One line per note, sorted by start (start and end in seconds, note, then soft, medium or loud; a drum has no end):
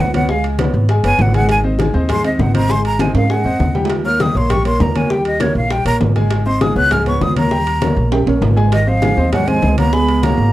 0.00 0.68 C#2 medium
0.00 0.15 F#5 medium
0.14 0.26 B3 medium
0.14 0.26 B4 medium
0.14 0.27 C#5 medium
0.14 0.32 F#5 loud
0.14 high bongo soft
0.14 high conga medium
0.14 high timbale medium
0.29 0.54 G#3 medium
0.29 0.54 G#4 medium
0.29 0.45 F5 medium
0.29 0.54 G#5 medium
0.29 high bongo medium
0.29 high conga soft
0.44 high bongo soft
0.44 high conga soft
0.44 high timbale medium
0.59 0.84 B3 medium
0.59 0.84 B4 medium
0.59 0.84 C#5 medium
0.59 high bongo medium
0.59 high conga medium
0.59 high timbale medium
0.59 low timbale medium
0.74 1.02 G#1 medium
0.74 high bongo soft
0.89 1.02 G#3 medium
0.89 1.02 G#4 medium
0.89 1.02 G#5 medium
0.89 high bongo medium
0.89 high conga soft
0.89 high timbale medium
1.03 1.18 F#1 medium
1.03 1.29 B3 medium
1.03 1.29 B4 medium
1.03 1.29 C#5 medium
1.03 1.23 G#5 loud
1.03 high conga soft
1.03 high timbale medium
1.18 1.89 G#1 medium
1.18 1.35 F#5 medium
1.18 high bongo soft
1.18 low bongo medium
1.18 high conga medium
1.18 low timbale medium
1.34 1.59 G#3 medium
1.34 1.59 G#4 medium
1.34 1.49 F#5 loud
1.34 1.59 G#5 medium
1.34 high bongo soft
1.34 high conga medium
1.34 high timbale medium
1.49 1.59 G#5 loud
1.49 high bongo medium
1.49 high conga soft
1.49 high timbale medium
1.64 1.76 C4 medium
1.64 1.76 C5 medium
1.64 1.77 D#5 medium
1.64 high bongo soft
1.64 high conga soft
1.79 1.92 G#3 medium
1.79 1.92 G#4 medium
1.79 1.92 G#5 medium
1.79 high bongo medium
1.79 high conga medium
1.79 high timbale medium
1.79 low timbale medium
1.94 2.36 D#2 medium
1.94 2.06 C4 medium
1.94 2.07 C5 medium
1.94 2.07 D#5 medium
1.94 high bongo soft
2.09 2.22 G#3 medium
2.09 2.22 G#4 medium
2.09 2.22 G#5 medium
2.09 2.24 C6 medium
2.09 high bongo medium
2.09 high conga soft
2.09 low conga medium
2.09 high timbale medium
2.24 2.49 C4 medium
2.24 2.49 C5 medium
2.24 2.49 D#5 medium
2.24 2.42 D#5 medium
2.24 high conga soft
2.24 high timbale medium
2.39 3.09 G#1 medium
2.39 2.55 F#5 medium
2.39 high bongo soft
2.39 low bongo medium
2.39 high conga medium
2.39 low timbale medium
2.54 2.67 C4 medium
2.54 2.67 C5 medium
2.54 2.67 D#5 medium
2.54 2.73 A#5 loud
2.54 high bongo soft
2.54 high conga medium
2.54 high timbale medium
2.69 2.94 G#3 medium
2.69 2.94 G#4 medium
2.69 2.94 G#5 medium
2.69 2.85 C6 loud
2.69 high bongo medium
2.69 high conga soft
2.85 3.02 A#5 loud
2.85 high bongo soft
2.85 high timbale medium
2.99 3.24 C4 medium
2.99 3.24 C5 medium
2.99 3.25 D#5 medium
2.99 3.15 G#5 medium
2.99 high bongo medium
2.99 high conga medium
2.99 high timbale medium
2.99 low timbale medium
3.14 3.43 G#2 medium
3.14 3.33 F5 medium
3.14 high bongo soft
3.14 high timbale medium
3.30 3.42 G#3 medium
3.30 3.42 G#4 medium
3.30 3.91 F#5 medium
3.30 3.42 G#5 medium
3.30 high bongo medium
3.30 high conga soft
3.44 3.59 F2 medium
3.44 3.69 C4 medium
3.44 3.70 C5 medium
3.44 3.70 D#5 medium
3.44 high conga soft
3.60 4.30 D#2 medium
3.60 high bongo soft
3.60 low bongo medium
3.60 high conga medium
3.75 4.00 G3 medium
3.75 4.00 G4 medium
3.75 4.00 G5 medium
3.75 high bongo soft
3.75 high conga medium
3.75 low timbale medium
3.85 low timbale medium
3.90 high bongo medium
3.90 high conga soft
3.90 high timbale medium
4.04 4.17 A#3 medium
4.04 4.17 A#4 medium
4.04 4.18 C#5 medium
4.04 4.23 F6 loud
4.04 high bongo soft
4.04 high conga soft
4.20 4.32 G3 medium
4.20 4.33 G4 medium
4.20 4.33 G5 medium
4.20 4.39 D#6 medium
4.20 high bongo medium
4.20 high conga loud
4.20 high timbale medium
4.20 low timbale medium
4.35 4.77 A#1 medium
4.35 4.47 A#3 medium
4.35 4.48 A#4 medium
4.35 4.48 C#5 medium
4.35 4.53 C6 loud
4.35 high bongo soft
4.50 4.62 G3 medium
4.50 4.63 G4 medium
4.50 4.63 G5 medium
4.50 4.66 C#6 medium
4.50 high bongo medium
4.50 high conga soft
4.50 low conga medium
4.50 high timbale loud
4.65 4.90 A#3 medium
4.65 4.90 A#4 medium
4.65 4.90 C#5 medium
4.65 4.83 C6 loud
4.65 high conga soft
4.65 high timbale medium
4.80 5.50 D#2 medium
4.80 4.98 A#5 medium
4.80 high bongo soft
4.80 low bongo medium
4.80 high conga medium
4.80 low timbale medium
4.95 5.08 A#3 medium
4.95 5.08 A#4 medium
4.95 5.08 C#5 medium
4.95 5.13 G#5 medium
4.95 high bongo soft
4.95 high conga medium
4.95 high timbale medium
5.10 5.35 G3 medium
5.10 5.35 G4 medium
5.10 5.35 G5 medium
5.10 5.26 G5 medium
5.10 high bongo medium
5.10 high conga soft
5.25 5.43 D#5 loud
5.25 high bongo soft
5.25 high conga soft
5.25 high timbale medium
5.40 5.65 A#3 medium
5.40 5.65 A#4 medium
5.40 5.65 C#5 medium
5.40 5.56 C#5 medium
5.40 high bongo medium
5.40 high conga medium
5.40 high timbale loud
5.40 low timbale medium
5.55 5.83 A#1 medium
5.55 5.74 F5 medium
5.55 high bongo soft
5.70 5.83 G3 medium
5.70 5.83 G4 medium
5.70 5.83 G5 medium
5.70 5.86 G5 medium
5.70 high bongo medium
5.70 high conga soft
5.70 high timbale medium
5.85 5.99 A#1 medium
5.85 6.10 A#3 medium
5.85 6.10 A#4 medium
5.85 6.10 C#5 medium
5.85 5.96 A#5 loud
5.85 high conga soft
5.85 high timbale medium
6.01 6.71 G#1 medium
6.01 high bongo soft
6.01 low bongo medium
6.01 high conga medium
6.01 low timbale medium
6.16 6.41 G#3 medium
6.16 6.41 G#4 medium
6.16 6.41 G#5 medium
6.16 high bongo soft
6.16 high conga medium
6.16 high timbale medium
6.30 high bongo medium
6.30 high conga soft
6.30 high timbale medium
6.46 6.59 C4 medium
6.46 6.59 C5 medium
6.46 6.59 D#5 medium
6.46 6.63 C6 loud
6.46 high bongo soft
6.61 6.74 G#3 medium
6.61 6.74 G#4 medium
6.61 6.74 G#5 medium
6.61 6.77 D#6 medium
6.61 high bongo medium
6.61 high conga medium
6.61 high timbale medium
6.61 low timbale medium
6.76 7.18 C#2 medium
6.76 6.88 B3 medium
6.76 6.89 B4 medium
6.76 6.89 C#5 medium
6.76 6.94 F#6 loud
6.76 high bongo soft
6.91 7.04 G#3 medium
6.91 7.04 G#4 medium
6.91 7.04 G#5 medium
6.91 7.07 F6 loud
6.91 high bongo medium
6.91 high conga soft
6.91 low conga medium
6.91 high timbale medium
7.06 7.31 B3 medium
7.06 7.31 B4 medium
7.06 7.32 C#5 medium
7.06 7.24 C#6 medium
7.06 high conga soft
7.06 low conga medium
7.06 high timbale medium
7.21 7.91 D#2 medium
7.21 7.37 D#6 loud
7.21 high bongo soft
7.21 low bongo medium
7.21 high conga medium
7.21 low timbale medium
7.36 7.49 A#3 medium
7.36 7.49 A#4 medium
7.36 7.49 C#5 medium
7.36 8.08 A#5 loud
7.36 high bongo soft
7.36 high conga medium
7.36 high timbale medium
7.51 7.76 G3 medium
7.51 7.76 G4 medium
7.51 7.77 G5 medium
7.51 high bongo medium
7.51 high conga soft
7.66 high bongo soft
7.66 high conga soft
7.66 high timbale medium
7.81 8.06 A#3 medium
7.81 8.06 A#4 medium
7.81 8.07 C#5 medium
7.81 high bongo medium
7.81 high conga medium
7.81 high timbale loud
7.81 low timbale medium
7.96 8.25 A#1 medium
7.96 high bongo soft
8.11 8.24 G3 medium
8.11 8.24 G4 medium
8.11 8.24 G5 medium
8.11 high bongo medium
8.11 high conga soft
8.11 high timbale loud
8.27 8.41 A#1 medium
8.27 8.52 A#3 medium
8.27 8.52 A#4 medium
8.27 8.52 C#5 medium
8.27 high conga soft
8.27 high timbale medium
8.41 9.12 G#1 medium
8.41 high bongo soft
8.41 low bongo medium
8.41 high conga medium
8.41 low timbale loud
8.56 8.69 G#3 medium
8.56 8.69 G#4 medium
8.56 8.69 G#5 medium
8.56 high bongo soft
8.56 low timbale medium
8.72 8.89 D#3 medium
8.72 8.90 D#5 medium
8.72 high bongo medium
8.72 high timbale medium
8.87 9.31 F3 medium
8.87 8.99 C4 medium
8.87 9.00 C5 medium
8.87 9.00 D#5 medium
8.87 9.33 F5 medium
8.87 high bongo soft
8.87 high conga soft
9.02 9.15 G#3 medium
9.02 9.15 G#4 medium
9.02 9.15 G#5 medium
9.02 high bongo medium
9.02 high conga medium
9.02 high timbale medium
9.02 low timbale medium
9.17 9.59 D#2 medium
9.17 9.30 C4 medium
9.17 9.30 C5 medium
9.17 9.30 D#5 medium
9.17 high bongo soft
9.32 9.49 F#3 medium
9.32 9.45 G#3 medium
9.32 9.45 G#4 medium
9.32 9.50 F#5 medium
9.32 9.45 G#5 medium
9.32 high bongo medium
9.32 high conga soft
9.32 low conga medium
9.32 high timbale loud
9.48 9.77 G#3 medium
9.48 9.72 C4 medium
9.48 9.73 C5 medium
9.48 9.73 D#5 medium
9.48 9.78 G#5 loud
9.48 high conga soft
9.48 low conga medium
9.48 high timbale medium
9.62 10.32 C#2 medium
9.62 high bongo soft
9.62 low bongo medium
9.62 high conga medium
9.62 low timbale medium
9.78 9.94 A#3 medium
9.78 9.91 B3 medium
9.78 9.91 B4 medium
9.78 9.91 C#5 medium
9.78 9.95 A#5 loud
9.78 high bongo soft
9.78 high conga medium
9.78 high timbale medium
9.93 10.18 G#3 medium
9.93 10.25 B3 medium
9.93 10.18 G#4 medium
9.93 10.18 G#5 medium
9.93 10.25 B5 loud
9.93 high bongo medium
9.93 high conga soft
10.08 high bongo soft
10.08 high conga soft
10.08 high timbale medium
10.23 10.48 B2 medium
10.23 10.53 A#3 medium
10.23 10.49 G#4 medium
10.23 10.49 C#5 medium
10.23 10.53 A#5 loud
10.23 high bongo medium
10.23 high conga medium
10.23 high timbale medium
10.23 low timbale medium
10.38 10.53 G#1 medium
10.38 high bongo soft